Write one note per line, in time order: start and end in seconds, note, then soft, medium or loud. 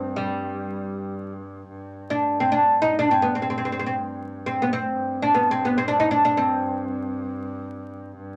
0.00 1.68 G2 medium
0.00 0.17 C4 medium
0.16 1.32 G3 medium
1.69 4.92 G2 medium
2.10 2.40 D4 medium
2.40 2.51 C4 medium
2.52 2.81 D4 medium
2.82 2.98 D#4 medium
2.99 3.11 D4 medium
3.11 3.22 C4 medium
3.22 3.35 B3 medium
3.35 3.41 C4 medium
3.42 3.49 C4 soft
3.50 3.57 C4 medium
3.58 3.64 C4 medium
3.65 3.71 C4 medium
3.72 3.78 C4 soft
3.79 3.85 C4 medium
3.86 3.94 C4 medium
4.46 4.63 C4 medium
4.62 4.73 B3 medium
4.73 5.23 C4 medium
4.92 8.15 G2 medium
5.22 5.33 D4 medium
5.35 5.49 B3 medium
5.51 5.65 C4 medium
5.65 5.77 B3 medium
5.78 5.88 C4 medium
5.88 5.99 D4 medium
6.00 6.11 D#4 medium
6.11 6.24 D4 medium
6.25 6.37 D4 medium
6.37 7.67 C4 medium
8.16 8.36 G2 medium